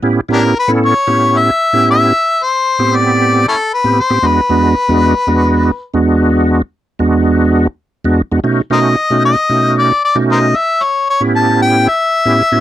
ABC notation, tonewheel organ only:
X:1
M:4/4
L:1/16
Q:1/4=114
K:A
V:1 name="Tonewheel organ"
[A,,B,CE=G] z [A,,B,CEG]2 z [A,,B,CEA]2 z [A,,B,CEG]3 z2 [A,,B,CEG]3 | z4 z [A,,B,=C=G]4- [A,,B,CG] z3 [A,,B,CG] z [A,,B,CG] | [E,,G,B,DF] z [E,,G,B,DF]2 z [E,,G,B,DF]2 z [E,,G,B,DF]3 z2 [E,,G,B,DF]3- | [E,,G,B,DF]2 z3 [E,,G,B,DF]4- [E,,G,B,DF] z3 [E,,G,B,DF] z [E,,G,B,DF] |
[B,,A,C^DF] z [B,,A,CDF]2 z [B,,A,CDF]2 z [B,,A,CDF]3 z2 [B,,A,CDF]3 | z4 z [A,,B,CE=G]4- [A,,B,CEG] z3 [A,,B,CEG] z [A,,B,CEF] |]